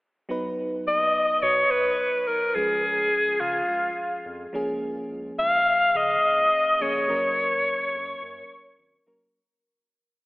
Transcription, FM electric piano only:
0.29 F#3 B3 D#4 B4
2.55 F3 G#3 C#4 G#4
4.53 F3 A#3 C#4 G#4
6.80 F3 A#3 C#4 G#4
7.08 F#3 A#3 C#4 A#4
9.07 F#3 A#3 C#4 A#4

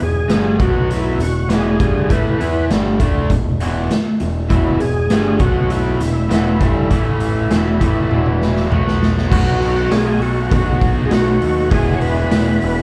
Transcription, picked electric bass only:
0.00 E1
0.30 G1
0.59 B1
1.18 E1
1.48 E1
1.80 G1
2.10 A1
2.39 E2
2.71 G1
3.00 D2
3.30 E1
3.61 E1
4.21 E1
4.51 E1
4.81 E1
5.11 G1
5.39 B1
6.01 E1
6.30 E1
6.61 G1
6.91 A1
7.51 E1
7.81 A1
8.11 E1
8.71 B1
9.31 B1
9.60 B1
9.90 B1
10.19 B1
10.52 B1
11.11 B1
11.41 D#2
11.71 E1
12.01 E1
12.31 E1
12.63 E1

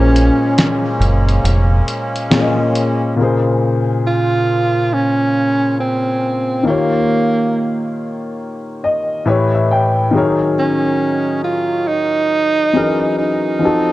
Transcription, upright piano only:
Already playing: A#2 A#3 C#4 G#4 C5
2.30 A#2 A#3 C#4 G#4 C#5
2.41 D#5
3.16 A#2 C#3 A#3
3.21 G#4 C5
6.63 D#3 A#3 F4
6.68 G4 C#5
8.84 D#5
9.25 A2 E3 G4 B4 C#5 E5
9.55 E5
9.71 G5
10.11 D#3 F#3 D#4 G#4
10.16 A#4 C#5
12.73 E3 F#3 C#4 G#4 A#4
13.59 F3 C4 D#4
13.64 F#4 A4

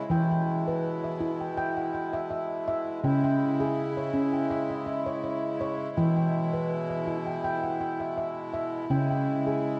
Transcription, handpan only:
Already playing: C#5
0.10 E3 E4 G5
0.31 G5
0.68 B4
1.04 E5
1.21 E4
1.41 G5
1.57 G5
1.77 F#5
1.94 G5
2.13 E5
2.31 E5
2.68 E5
3.04 C#3 C#4 G5
3.24 G5
3.60 G#4
3.97 C#5
4.14 C#4
4.33 G5
4.51 E5
4.70 D#5
4.86 E5
5.06 C#5
5.24 C#5
5.61 C#5
5.97 E3 E4 G5
6.17 G5
6.53 B4
6.90 E5
7.07 E4
7.27 G5
7.44 G5
7.64 F#5
7.81 G5
8.00 E5
8.18 E5
8.54 E5
8.90 C#3 C#4 G5
9.10 G5
9.47 G#4

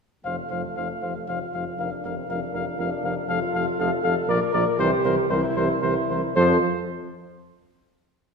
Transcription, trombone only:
0.25 F3
0.51 F3
0.77 F3
1.03 F3
1.28 F3
1.53 F3
1.78 F3
2.04 F3
2.29 F3
2.53 F3
2.78 F3
3.03 F3
3.28 F3
3.53 F3
3.78 F3
4.04 F3
4.28 F3
4.54 F3
4.79 E3
5.05 E3
5.30 E3
5.57 E3
5.83 E3
6.10 E3
6.36 F3

